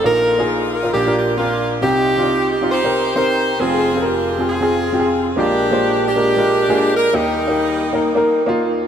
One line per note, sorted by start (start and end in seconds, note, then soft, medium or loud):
0.04 0.90 A#1 medium
0.04 0.90 A#2 medium
0.04 0.32 D#4 medium
0.04 0.90 D#4 medium
0.04 0.33 F4 medium
0.04 0.90 F4 medium
0.04 0.33 A#4 medium
0.04 0.47 A#4 loud
0.38 0.74 D#4 medium
0.38 0.74 F4 medium
0.38 0.75 G#4 medium
0.75 0.93 A#4 medium
0.83 0.93 D#4 medium
0.83 0.94 F4 medium
0.83 0.94 A#4 medium
0.93 1.79 A#1 medium
0.93 1.79 A#2 medium
0.93 1.37 A#3 medium
0.93 1.37 D4 medium
0.93 1.18 G4 loud
1.06 1.31 D4 medium
1.06 1.31 F4 medium
1.06 1.32 A#4 medium
1.19 1.37 G4 medium
1.37 1.80 A#3 medium
1.37 1.44 C4 medium
1.37 1.80 D4 medium
1.37 1.73 F4 medium
1.37 1.73 A#4 medium
1.43 1.75 D4 medium
1.82 3.56 C2 medium
1.82 3.56 C3 medium
1.82 2.10 C4 medium
1.82 2.68 C4 medium
1.82 2.10 D#4 medium
1.82 2.68 D#4 medium
1.82 2.49 G4 loud
1.82 2.11 G4 medium
2.17 2.52 C4 medium
2.17 2.23 D4 medium
2.17 2.53 F4 medium
2.23 2.55 D#4 medium
2.52 2.70 G4 loud
2.61 2.77 C4 medium
2.61 2.78 D#4 medium
2.61 2.78 F4 medium
2.72 3.15 D#4 loud
2.72 3.15 G4 medium
2.72 3.15 C5 loud
2.84 3.08 C4 medium
2.84 3.09 D#4 medium
2.84 3.09 A#4 medium
3.16 3.50 C4 medium
3.16 3.51 D#4 medium
3.16 3.58 D#4 medium
3.16 3.57 G4 medium
3.16 3.51 A#4 loud
3.16 3.58 C5 loud
3.60 5.34 F1 medium
3.60 5.34 F2 medium
3.60 3.87 C4 medium
3.60 4.04 C4 medium
3.60 3.88 F4 medium
3.60 4.45 F4 medium
3.60 4.05 G#4 loud
3.60 3.89 G#4 medium
3.94 4.29 C4 medium
3.94 4.30 F4 medium
3.94 4.01 A4 medium
4.02 4.48 C4 medium
4.02 4.49 G4 loud
4.02 4.33 A#4 medium
4.38 4.55 C4 medium
4.38 4.55 F4 medium
4.38 4.56 G#4 medium
4.49 5.34 C4 medium
4.49 5.34 F4 medium
4.49 5.19 G#4 loud
4.61 4.85 C4 medium
4.61 4.86 F4 medium
4.61 4.86 G#4 medium
4.93 5.27 C4 medium
4.93 5.28 F4 medium
4.93 5.00 G4 medium
5.00 5.31 G#4 medium
5.36 7.10 A#1 medium
5.36 7.10 A#2 medium
5.36 5.64 G#3 medium
5.36 5.64 A#3 medium
5.36 5.65 D4 medium
5.36 6.06 D4 medium
5.36 5.65 F4 medium
5.36 6.03 G4 loud
5.36 5.65 A#4 medium
5.70 6.06 G#3 medium
5.70 6.06 A#3 medium
5.70 6.06 D4 medium
5.70 6.07 F4 medium
5.70 6.07 C5 medium
6.07 6.92 D4 medium
6.07 6.93 G4 loud
6.15 6.32 G#3 medium
6.15 6.32 A#3 medium
6.15 6.32 D4 medium
6.15 6.32 F4 medium
6.15 6.32 A#4 medium
6.37 6.62 G#3 medium
6.37 6.62 A#3 medium
6.37 6.62 D4 medium
6.37 6.63 F4 medium
6.37 6.63 A#4 medium
6.69 7.04 G#3 medium
6.69 7.04 A#3 medium
6.69 7.04 D4 medium
6.69 7.05 F4 medium
6.69 7.05 G#4 loud
6.97 7.15 A#4 loud
7.13 8.87 D#2 medium
7.13 8.87 D#3 medium
7.13 8.43 G3 medium
7.13 7.41 A#3 medium
7.13 8.43 A#3 medium
7.13 7.42 D#4 medium
7.13 8.48 D#4 loud
7.13 7.42 G4 medium
7.48 7.83 A#3 medium
7.48 7.83 D#4 medium
7.48 7.84 G4 medium
7.93 8.09 A#3 medium
7.93 8.09 D#4 medium
7.93 8.10 A#4 medium
8.15 8.39 A#3 medium
8.15 8.40 D#4 medium
8.15 8.41 A#4 loud
8.46 8.81 A#3 loud
8.46 8.82 D#4 medium
8.46 8.82 F4 loud